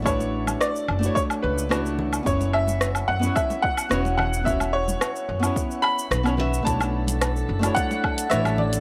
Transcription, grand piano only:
\new Staff \with { instrumentName = "Grand piano" } { \time 4/4 \key b \minor \tempo 4 = 109 cis''4 d''4 cis''8 b'4 r8 | cis''8 e''4 fis''8 e''8 fis''4 fis''8 | e''8 cis''2 b''4. | a''4. r8 fis''4 e''8 d''8 | }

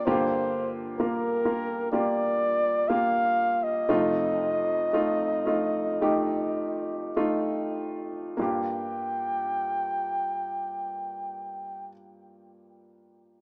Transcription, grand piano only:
<<
  \new Staff \with { instrumentName = "Grand piano" } { \time 4/4 \key g \minor \tempo 4 = 54 <bes f' g'>4 <bes f' bes'>8 <bes f' bes'>8 <bes f' g'>4 <bes f' g'>4 | <a ees' f'>4 <a ees' f'>8 <a ees' f'>8 <a ees' g'>4 <a ees' f'>4 | <bes f' g'>1 | }
  \new Staff \with { instrumentName = "Grand piano" } { \clef bass \time 4/4 \key g \minor <g, d>1 | <f, c>1 | g,1 | }
>>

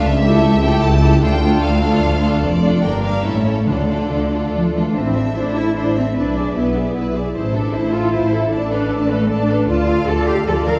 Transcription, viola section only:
\new Staff \with { instrumentName = "Viola section" } { \time 3/4 \key d \minor \tempo 4 = 152 r8 <a e'>4 <a e'>4 <a e'>8 | <a d'>8 <a d'>4 <a d'>4 <a d'>8 | r8 <a d'>8 <bes d'>8 <bes d'>8 <a cis'>8 <a cis'>8 | <a d'>8 <a d'>4 <a d'>4 <a d'>8 |
\key a \minor e'8 a'8 e'8 a'8 e'8 a'8 | e'8 gis'8 e'8 gis'8 e'8 gis'8 | e'8 a'8 e'8 a'8 e'8 a'8 | a'8 b'8 a'8 b'8 a'8 b'8 |
\key d \minor f'8 a'8 f'8 a'8 f'8 a'8 | }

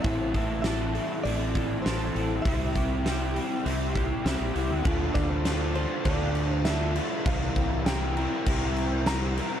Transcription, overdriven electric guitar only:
\new Staff \with { instrumentName = "Overdriven electric guitar" } { \time 4/4 \key d \minor \tempo 4 = 100 <a, e c' e' a'>8 <c' e' a'>8 <e c' e' a'>8 <c' e' a'>8 <a, e c' e' a'>8 <c' e' a'>8 <e c' e' a'>8 <c' e' a'>8 | <c g c' e' g'>8 <c' e' g'>8 <g c' e' g'>8 <c' e' g'>8 <c g c' e' g'>8 <c' e' g'>8 <g c' e' g'>8 <c' e' g'>8 | <d d' f' a'>4 <d d' f' a'>8 <d' f' a'>8 <d d' f' a'>4 <d d' f' a'>8 <d' f' a'>8 | <c e g c' e' bes'>4 <g c' e' bes'>8 <g c' e' bes'>8 <g c' e' bes'>4 <g c' e' bes'>8 <g c' e' bes'>8 | }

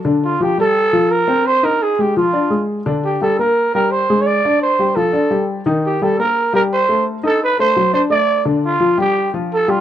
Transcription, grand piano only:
\new Staff \with { instrumentName = "Grand piano" } { \time 4/4 \key g \minor \tempo 4 = 171 <d d'>4 <f f'>8 <g g'>4 <f f'>4 <c' c''>8~ | <c' c''>8 <ees' ees''>4 <aes aes'>8 <f f'>8 <d' d''>8 <aes aes'>4 | <d d'>4 <g g'>8 <bes bes'>4 <g g'>4 <aes aes'>8~ | <aes aes'>8 <d' d''>4 <g g'>8 <f f'>8 <d' d''>8 <g g'>4 |
<ees ees'>4 <g g'>8 <bes bes'>4 <g g'>4 <a a'>8~ | <a a'>8 <ees' ees''>4 <a a'>8 <fis fis'>8 <d' d''>8 <a a'>4 | <d d'>4 <f f'>8 <g g'>4 <f f'>4 <g g'>8 | }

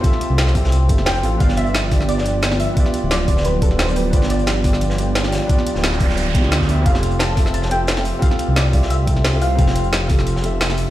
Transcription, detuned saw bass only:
\new Staff \with { instrumentName = "Detuned saw bass" } { \clef bass \time 4/4 \key g \mixolydian \tempo 4 = 176 r8. c,4.~ c,16 f,,4 a,,8 | g,,2.~ g,,8. r16 | r8. d,,2.~ d,,16 | g,,2.~ g,,8. r16 |
r8. d,,4.~ d,,16 d,4. | f,,2.~ f,,8. r16 | r8. c,2.~ c,16 | f,,2.~ f,,8. r16 | }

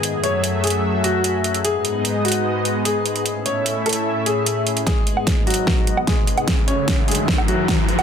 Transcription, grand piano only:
\new Staff \with { instrumentName = "Grand piano" } { \time 4/4 \key gis \phrygian \tempo 4 = 149 gis'8 cis''8 r8 gis'8 r8 fis'4. | gis'4. fis'4. gis'4~ | gis'8 cis''8 r8 a'8 r8 gis'4. | <gis gis'>4. <fis fis'>4. <gis gis'>4~ |
<gis gis'>8 <cis' cis''>8 r8 <gis gis'>8 r8 <fis fis'>4. | }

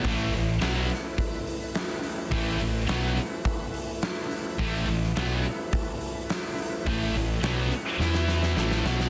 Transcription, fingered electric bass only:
\new Staff \with { instrumentName = "Fingered electric bass" } { \clef bass \time 4/4 \key e \phrygian \tempo 4 = 106 a,,8 a,,8 b,,8 r2 r8 | a,,8 a,,8 b,,8 r2 r8 | a,,8 a,,8 b,,8 r2 r8 | a,,8 a,,8 b,,8 r8 e,4 a,,8 b,,8 | }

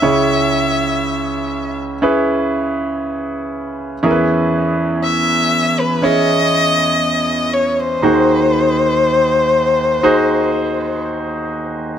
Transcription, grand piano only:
<<
  \new Staff \with { instrumentName = "Grand piano" } { \time 4/4 \key e \major \tempo 4 = 60 <cis' e' gis' cis''>2 <cis' e' gis' b'>2 | <cis' e' gis' ais' b'>2 <cis' e' gis' cis''>2 | <dis' fis' gis' bis'>2 <dis' fis' gis' bis'>2 | }
  \new Staff \with { instrumentName = "Grand piano" } { \clef bass \time 4/4 \key e \major <cis, cis>1 | <e, e>1 | <dis, dis>1 | }
>>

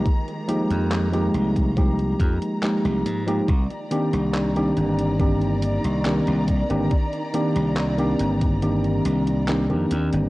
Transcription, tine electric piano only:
\new Staff \with { instrumentName = "Tine electric piano" } { \time 4/4 \key c \minor \tempo 4 = 70 r8 <f aes bes ees' g'>8. <f aes bes ees' g'>8. <f aes bes ees' g'>4 <f aes bes ees' g'>8. <f aes bes ees' g'>16 | r8 <ees bes c' d' g'>8. <ees bes c' d' g'>8. <ees bes c' d' g'>4 <ees bes c' d' g'>8. <ees bes c' d' g'>16 | r8 <ees bes c' d' g'>8. <ees bes c' d' g'>8. <ees bes c' d' g'>4 <ees bes c' d' g'>16 <ees bes c' d' g'>8. | }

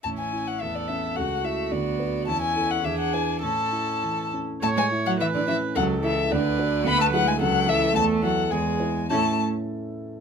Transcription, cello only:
\new Staff \with { instrumentName = "Cello" } { \clef bass \time 2/4 \key a \major \tempo 4 = 106 e'4 a'4 | fis'2 | e'4 gis'4 | a'4. r8 |
a16 gis8 fis16 e16 d16 e8 | fis8 e8 d4 | b16 a16 fis16 gis16 fis8 e8 | a8 fis8 gis4 |
a8 r4. | }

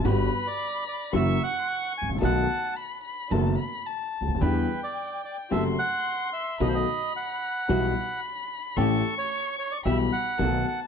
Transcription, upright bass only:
\new Staff \with { instrumentName = "Upright bass" } { \clef bass \time 4/4 \key e \minor \tempo 4 = 110 g,,16. r4. r32 fis,,16. r4 r16 gis,,32 a,,32 ais,,32 | b,,16. r4. r32 fis,,16. r4 r16 cis,32 d,32 dis,32 | e,16. r4. r32 fis,,16. r4. r32 | b,,16. r4. r32 b,,16. r4. r32 |
a,,16. r4. r32 b,,16. r8 r32 b,,16. r8 r32 | }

